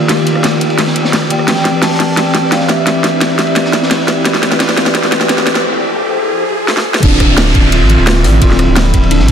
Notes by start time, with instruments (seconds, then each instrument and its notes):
Already playing: ambient pad D#3 F3 G4 A#4 D5, riser
0.08 tine electric piano D#3 A#3 F4 G4 D5, snare, closed hi-hat, ride
0.27 closed hi-hat, ride
0.32 tine electric piano D#3 A#3 F4, cross-stick
0.37 tine electric piano G4 D5
0.43 snare, closed hi-hat, ride
0.61 closed hi-hat, ride
0.70 ride
0.78 cross-stick, snare, closed hi-hat, ride
0.87 snare
0.96 closed hi-hat, ride
1.05 snare
1.13 snare, closed hi-hat, ride
1.22 cross-stick
1.29 tine electric piano D#3 A#3 F4 G4 D5, soft synth lead G5, closed hi-hat, ride
1.39 cross-stick
1.46 tine electric piano E3 C4 G4 B4 D5, ambient pad E4 G4 B4, snare, closed hi-hat, ride
1.56 snare
1.65 snare, closed hi-hat, ride
1.71 tine electric piano E3 C4 G4
1.76 tine electric piano B4 D5
1.82 soft synth lead A5, snare, closed hi-hat, open hi-hat
2.00 snare, closed hi-hat, ride
2.16 tine electric piano E3 C4 G4 B4 D5, soft synth lead G5, snare, closed hi-hat, ride
2.35 snare, closed hi-hat, ride
2.40 tine electric piano E3 C4 G4
2.45 tine electric piano B4 D5
2.52 soft synth lead F5, snare, closed hi-hat, ride
2.60 snare
2.69 soft synth lead E5, snare, closed hi-hat, ride
2.85 tine electric piano E3 C4 G4 B4 D5, snare, closed hi-hat, ride
3.04 snare, closed hi-hat, ride
3.10 tine electric piano E3 C4 G4
3.14 tine electric piano B4 D5
3.21 snare, closed hi-hat, ride
3.39 snare, closed hi-hat, ride
3.47 ride
3.54 tine electric piano E3 C4 G4 B4 D5, snare, closed hi-hat, ride
3.65 snare
3.73 snare, closed hi-hat, ride
3.79 tine electric piano E3 C4 G4, snare
3.84 tine electric piano B4 D5
3.91 snare, closed hi-hat, ride
4.08 snare, closed hi-hat, ride
4.24 tine electric piano E3 C4 G4 B4 D5, ambient pad F3 A4 C5, snare, closed hi-hat, ride
4.34 snare
4.43 snare, closed hi-hat, ride
4.49 tine electric piano E3 C4 G4, snare
4.53 tine electric piano B4 D5
4.59 tine electric piano E3 C4 G4 B4 D5, snare, closed hi-hat, open hi-hat
4.69 snare
4.77 snare, closed hi-hat, ride
4.83 tine electric piano E3 C4 G4, snare
4.88 tine electric piano B4 D5
4.93 tine electric piano E3 C4 G4 B4 D5, snare, closed hi-hat, ride
5.03 snare
5.12 snare, closed hi-hat, ride
5.18 tine electric piano E3 C4 G4, snare
5.23 tine electric piano B4 D5
5.28 tine electric piano E3 C4 G4 B4 D5, snare, closed hi-hat, ride
5.38 snare
5.47 snare, closed hi-hat, ride
5.53 tine electric piano E3 C4 G4, snare
5.57 tine electric piano B4 D5
6.68 snare
6.77 snare
6.94 snare
7.01 sub bass D1, tine electric piano D3 C4 E4 F4 D5, ambient pad F3 C4 E5, soft synth lead D4, kick, closed hi-hat, crash, ride, downlifter
7.11 snare
7.20 kick, cross-stick, closed hi-hat, ride
7.26 sub bass D1, tine electric piano D3 C4 E5
7.31 tine electric piano F4 D5
7.37 snare, closed hi-hat, open hi-hat
7.46 cross-stick
7.55 sub bass D1, kick, closed hi-hat, ride
7.72 soft synth lead F4, closed hi-hat, ride
7.81 sub bass A1
7.90 closed hi-hat, ride
7.98 sub bass D1
8.07 snare, closed hi-hat, ride
8.16 snare
8.23 sub bass A1, tine electric piano D3 C4 E4 F4 D5, cross-stick, open hi-hat, ride
8.40 sub bass D1, tine electric piano D3 C4 E4 F4 D5, soft synth lead F4, kick, closed hi-hat, ride
8.50 snare
8.59 cross-stick, closed hi-hat, ride
8.65 sub bass D1, tine electric piano D3 C4 E4
8.70 tine electric piano F3 D5
8.76 soft synth lead E4, snare, closed hi-hat, ride
8.85 cross-stick
8.94 sub bass D1, kick, closed hi-hat, ride
9.03 ride
9.11 soft synth lead D4, closed hi-hat, ride
9.20 sub bass A1, snare
9.28 soft synth lead D4, kick, closed hi-hat